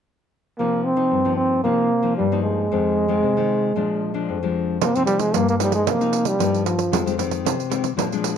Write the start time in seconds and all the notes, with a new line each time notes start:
0.58 C3 F3 A#3 D#4
0.84 C4
0.96 F3 A#3 D#4
1.11 G2
1.25 F3 A#3 D#4
1.37 C4
1.64 C3 F3 A#3 D#4
2.02 F3 A#3 D#4
2.17 G2 G3
2.32 F3 A#3 D#4
2.43 G#3
2.72 F2 D#3 G#3 C4
3.08 D#3 G#3 C4
3.23 C3
3.37 D#3 G#3 C4
3.76 A#2 F3 G#3 D4
4.14 F3 G#3 D4
4.29 F2
4.43 F3 G#3 D4
4.81 C3 F3 A#3 D#4, pandeiro
4.95 F3 A#3 C4 D#4, pandeiro
5.06 F3 G3 A#3 D#4, pandeiro
5.19 G#3, pandeiro
5.34 G2 A#3, pandeiro
5.49 A#3, pandeiro
5.60 F3 G3 A#3 D#4, pandeiro
5.72 G#3, pandeiro
5.87 C3 A#3, pandeiro
6.00 F3 A#3 D#4, pandeiro
6.13 pandeiro
6.25 G3, pandeiro
6.39 G2 F3 A#3 D#4, pandeiro
6.54 pandeiro
6.66 F3, pandeiro
6.79 pandeiro
6.92 F2 D#3 G#3 C4, pandeiro
7.06 D#3 G#3 C4, pandeiro
7.18 D#3 G#3 C4, pandeiro
7.31 pandeiro
7.45 C3, pandeiro
7.60 pandeiro
7.70 D#3 G#3 C4, pandeiro
7.84 pandeiro
7.97 A#2 F3 G#3 D4, pandeiro
8.12 F3 G#3 D4, pandeiro
8.24 pandeiro